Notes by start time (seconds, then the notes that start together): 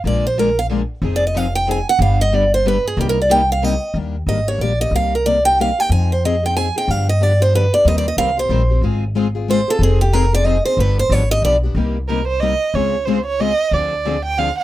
0.04 A#1 D3 F3 G#3 A#3 D4 F4 G#4 A#4 D5
0.27 C5
0.38 D3 F3 G#3 A#3 D4 F4 G#4 A#4
0.59 F5
0.70 D3 F3 G#3 A#3 D4 F4 G#4 A#4
1.02 F1 F3 C4 D#4 G#4
1.16 D5
1.27 D#5
1.36 F3 C4 D#4 G#4 F5
1.55 G5
1.68 F3 C4 D#4 G#4 G#5
1.89 F#5
1.99 G1 D3 G3 B3 D4 G4 F5
2.21 D#5
2.32 D3 G3 B3 D4 G4 D5
2.54 C5
2.65 D3 G3 B3 D4 G4 B4
2.88 G#4
2.97 C2 C3 G3 A#3 D#4 G4
3.09 A#4
3.22 D5
3.30 C3 G3 A#3 D#4 G4 G5
3.52 F5
3.63 C3 G3 A#3 D#4 G4 D#5
3.94 D#2 D#3 G3 A#3 D4 G4
4.27 G#1 D#3 G3 A#3 D4 G4 D#5
4.48 A#3 D4 G4 C#5
4.59 A#1 D#3 G3 A#3 D4 G4 D5
4.80 A#3 D4 G4 D#5
4.91 C2 C3 G3 A#3 D#4
4.95 G4 F5
5.15 A#4
5.26 C3 G3 A#3 D#4 G4 D5
5.45 A#3 D#4 G4 G5
5.60 C3 G3 A#3 D#4 G4 F5
5.78 A#3 D#4 G4 G5
5.89 F2 F3 C4 D#4 G#4 G#5
6.12 C5
6.24 F3 C4 D#4 G#4 D#5
6.43 C4 D#4 G#4 G5
6.56 F3 C4 D#4 G#4 G#5
6.76 C4 D#4 G#4 G5
6.88 G2 D3 F3 B3 D4 G4 F5
7.09 D#5
7.20 D3 F3 B3 D4 G4 D5
7.40 B3 D4 G4 C5
7.54 D3 F3 B3 D4 G4 B4
7.73 B3 D4 G4 D5
7.85 D#2 D#3 G3 C4 G4 A#4 C5 D#5
7.98 D5
8.08 D#5
8.17 C2 D#3 G3 C4 G4 A#4 C5 F5
8.37 C4 G4 C5
8.49 A#1 D#3 G3 C4 G4 A#4 C5
8.69 C4 G4 C5
8.81 G#1 G#3 C4 F4 G#4
9.15 G#3 C4 F4 G#4
9.35 C4 F4 G#4
9.48 G#3 C4 F4 G#4 C5
9.68 C4 F4 G#4 A4
9.79 F1 F3 C4 D#4 G#4
9.83 G#4
10.01 G4
10.13 F3 C4 D#4 G#4 A#4
10.33 C4 D#4 G#4 D5
10.45 F3 C4 D#4 G#4 D#5
10.65 C4 D#4 G#4 C5
10.77 G1 D3 F3 B3 D4 G4 B4
10.99 C5
11.10 G#1 D3 F3 B3 D4 G4 C#5
11.31 B3 D4 G4 D#5
11.42 B1 D3 F3 B3 D4 G4 D5
11.63 B3 D4 G4
11.75 C2 C3 G3 A#3 D#4 G4
12.08 C3 G3 A#3 D#4 G4 A#4
12.28 C5
12.41 C3 G3 A#3 D#4 G4 D#5
12.74 C#2 C#3 G#3 C4 F4 G#4 C#5
13.05 C#3 G#3 C4 F4 G#4 C5
13.26 C#5
13.40 C#3 G#3 C4 F4 G#4 D#5
13.71 D2 D3 F3 C4 D4 G#4 D5
14.06 D3 F3 C4 D4 G#4
14.25 G5
14.38 D3 F3 C4 D4 G#4 F5
14.58 F#5